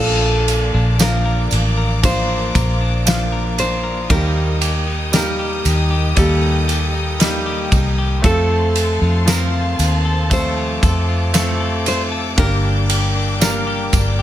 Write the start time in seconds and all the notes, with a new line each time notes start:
Already playing: A#1 A#2 F3 A#3 D4 F4 D5 F5 D6
0.00 A4
0.23 D4
0.48 ride, tambourine
0.74 A#1 D4
0.99 F3 A#3 D4 F4 A#4, snare, ride, tambourine
1.26 A#4
1.51 A1 D4, ride, tambourine
1.77 A#4
2.03 F3 A#3 D4 F4 A#4 C5, kick, ride, tambourine
2.29 D4
2.55 A#1 A#4, kick, ride, tambourine
2.81 D4
3.06 F3 A#3 D4 F4, snare, ride, tambourine
3.32 A#4
3.58 D4 C5, ride, tambourine
3.84 A#4
4.09 D#2 D#3 G3 A#3 D#4 G4 A#4 D#5 G5 D#6, kick, ride, tambourine
4.35 D#4
4.61 G4, ride, tambourine
4.87 D#4
5.12 G3 A#3 D#4 G4 A#4, snare, ride, tambourine
5.39 G4
5.65 D#2 D#4, ride, tambourine
5.91 G4
6.16 D#2 D#3 G3 A#3 D#4 G4 A4, kick, ride, tambourine
6.42 D#4
6.68 G4, ride, tambourine
6.94 D#4
7.20 G3 A#3 D#4 G4, snare, ride, tambourine
7.46 G4
7.72 C2 D#4, kick, ride, tambourine
7.98 G4
8.22 F2 F3 A3 C4 F4 A4 C5 F5 A5 C6, kick, ride, tambourine
8.50 F4
8.76 A4, ride, tambourine
9.01 F2 F4
9.26 F3 C4 F4 A#4 C5, snare, ride, tambourine
9.79 D#2 F4, ride, tambourine
10.05 A4
10.30 F3 A3 C4 F4 A4 C5 D6, kick, ride, tambourine
10.57 F4
10.83 F2 A4, kick, ride, tambourine
11.09 F4
11.33 A3 C4 F4 A4, snare, ride, tambourine
11.60 A4
11.86 F4 C5, ride, tambourine
12.12 A4
12.36 G1 G2 A#3 D4 G4 A#4 D5 G5, kick, ride, tambourine
12.64 D4
12.90 G4, ride, tambourine
13.15 D4
13.40 G3 A#3 D4 G4 A#4, snare, ride, tambourine
13.67 G4
13.93 G1 D4, kick, ride, tambourine
14.19 G4